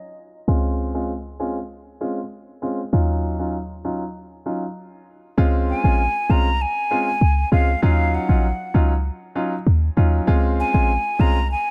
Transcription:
Already playing: D#2 D#5
0.48 C#2 G#3 C4 C#4 F4
0.94 G#3 C4 C#4 F4
1.40 G#3 C4 C#4 F4
2.01 G#3 C4 C#4 F4
2.62 G#3 C4 C#4 F4
2.93 D#2 F#3 C#4 D#4 F4
3.39 F#3 C#4 D#4 F4
3.85 F#3 C#4 D#4 F4
4.46 F#3 C#4 D#4 F4
5.38 C#2 G#3 C4 C#4 F4
5.70 G#5
5.84 A#1 G#3 C4 C#4 F4
6.29 C2 G#3 C4 C#4 F4 A#5
6.61 G#5
6.91 G#3 C4 C#4 F4
7.21 C#2
7.52 C#2 G#3 C4 C#4 F4 F5
7.82 D#2 F#3 C#4 D#4 F4 F5
8.14 F#5
8.29 A#1 F#3 C#4 D#4 F4
8.74 C#2 F#3 C#4 D#4 F4
9.35 F#3 C#4 D#4 F4
9.67 D#2
9.97 D#2 F#3 C#4 D#4 F4
10.27 C#2 G#3 C4 C#4 F4
10.60 G#5
10.74 A#1 G#3 C4 C#4 F4
11.19 C2 G#3 C4 C#4 F4 A#5
11.51 G#5

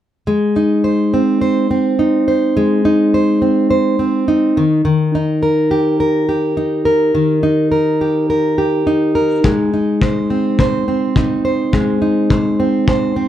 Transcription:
0.27 G#3
0.56 D#4
0.84 C5
1.14 C4
1.41 C5
1.71 C4
1.99 D#4
2.28 C5
2.57 G#3
2.85 D#4
3.14 C5
3.42 C4
3.71 C5
3.99 C4
4.28 D#4
4.57 D#3
4.85 D#3
5.15 D#4
5.43 A#4
5.71 G4
6.00 A#4
6.29 G4
6.57 D#4
6.85 A#4
7.15 D#3
7.43 D#4
7.72 A#4
8.01 G4
8.30 A#4
8.58 G4
8.87 D#4
9.15 A#4
9.44 G#3, kick
9.74 D#4
10.02 C5, kick
10.30 C4
10.59 C5, kick
10.88 C4
11.16 D#4, kick
11.45 C5
11.73 G#3, kick
12.02 D#4
12.30 C5, kick
12.60 C4
12.88 C5, kick
13.16 C4

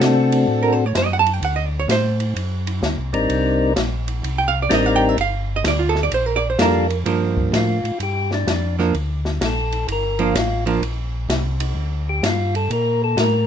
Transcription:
Already playing: A3 C4 D4 F#4 A4
0.00 C3, snare, hi-hat pedal, ride
0.32 ride
0.48 A2
0.63 A#4
0.72 C5
0.86 C#5
0.95 F#2 C5, snare, hi-hat pedal, ride
1.06 D#5
1.13 F#5
1.19 A5
1.26 ride
1.34 G5
1.42 D2 F#5, ride
1.56 D#5
1.67 D5
1.80 C#5
1.88 A2 C5, snare, hi-hat pedal, ride
2.20 ride
2.35 F#2, ride
2.67 ride
2.82 D2, snare, hi-hat pedal
2.98 C2
3.13 A1 G3 C4 D4 D#4 A#4, ride
3.30 C2, ride
3.76 A#1, snare, hi-hat pedal, ride
4.08 ride
4.23 C2, ride
4.38 G5
4.48 F5
4.62 D5
4.69 A1 G3 C4 D4 D#4 A#4, snare, hi-hat pedal, ride
4.74 D#5
4.86 F5
4.96 G5
5.09 E5
5.17 G1 F5, ride
5.56 D#5
5.64 D2 D5, snare, hi-hat pedal, ride
5.79 F4
5.89 A4
5.95 snare
6.03 D5
6.12 A#1 C5, ride
6.26 A#4
6.36 D5
6.50 C5
6.58 F2 G3 A#3 D4 F4 A4 A#4, snare, hi-hat pedal, ride
6.90 ride
7.05 G2 F3 A#3 D4, ride
7.37 kick
7.52 A2, snare, hi-hat pedal, ride
7.56 F4
7.84 A2, ride
7.99 G2 G4, ride
8.31 D4, snare
8.47 F2, snare, hi-hat pedal, ride
8.79 F3 A#3 D4, snare
8.94 D2, ride
9.25 snare
9.41 A#1, snare, hi-hat pedal, ride
9.45 A4
9.72 ride
9.88 G1, ride
9.92 A#4
10.19 F3 A#3 D4 F4, ride
10.35 A1, snare, hi-hat pedal, ride
10.66 F3 A#3 D4, ride
10.81 A#1, ride
11.29 C2, snare, hi-hat pedal, ride
11.60 ride
11.75 D2
12.09 G4
12.23 G2 F4, snare, hi-hat pedal, ride
12.55 A4, ride
12.70 A#2 A#4, ride
13.04 A4
13.17 A2 A#4, snare, hi-hat pedal, ride

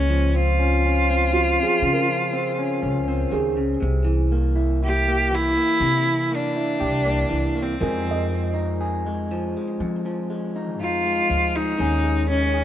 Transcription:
Already playing: C#2 G#3 C#4
0.10 F3
0.34 C4 F4
0.59 C#4
0.85 C#4
1.10 C4
1.33 F3 F4
1.60 C4 G#4
1.82 C#3
1.93 A#4
2.07 F3
2.33 C4
2.59 C#4
2.82 C#2 C#4
3.08 C4
3.31 C#2 D#3 G#4
3.57 C#3
3.80 C2 C3
4.05 E3
4.32 A#3
4.56 E4
4.83 E4 G4
5.08 A#3
5.31 E3
5.35 E4
5.57 A#3
5.80 C3
6.06 E3
6.32 A#3
6.36 D4
6.56 E4
6.80 C2 G4
7.05 A#3
7.29 C2 E3
7.56 A#3
7.61 C4
7.80 F2 F3 G#3 D#4 G#4 A#4
8.05 F3
8.11 D#5
8.31 G#3
8.54 D#4
8.81 G#4
9.06 G#3
9.31 F3
9.57 G#3
9.80 F2 F3
10.06 F3
10.30 G#3
10.56 D#4
10.79 F2 D#4 F4
11.04 G#3
11.29 D2 F3
11.55 G#3 D#4
11.78 D#2 D#3 G#3 C#4 G#4
12.04 G#3
12.29 C#4
12.54 G#4

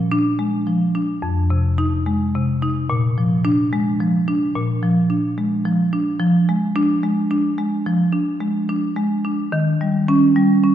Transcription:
Already playing: A#2 F3
0.12 D4
0.39 G#3
0.67 F3
0.95 D4
1.22 F2
1.50 C3
1.78 D#4
2.06 G#3
2.35 C3
2.62 D#4
2.90 A#2
3.18 F3
3.45 D4
3.73 G#3
4.00 F3
4.28 D4
4.55 A#2
4.83 F3
5.10 D4
5.38 G#3
5.65 F3
5.93 D4
6.20 F3
6.49 G#3
6.76 D4
7.03 G#3
7.31 D4
7.58 G#3
7.86 F3
8.13 D4
8.41 G#3
8.69 D4
8.96 G#3
9.25 D4
9.52 D#3
9.81 G3
10.08 C#4
10.36 G3
10.64 C#4

